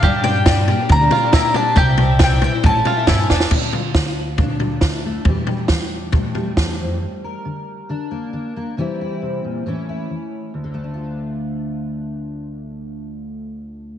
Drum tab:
CC |----------------|----------------|x---------------|----------------|
SD |----o-------o---|----o-------o-oo|----o-------o---|----o-------o---|
FT |o-o-o-o-o-o-o-o-|o-o-o-o-o-o-o---|o-o-----o-o-----|o-o-----o-o-----|
BD |o---o---o---o---|o---o---o---o---|o---o---o---o---|o---o---o---o---|

CC |----------------|----------------|----------------|----------------|
SD |----------------|----------------|----------------|----------------|
FT |----------------|----------------|----------------|----------------|
BD |----------------|----------------|----------------|----------------|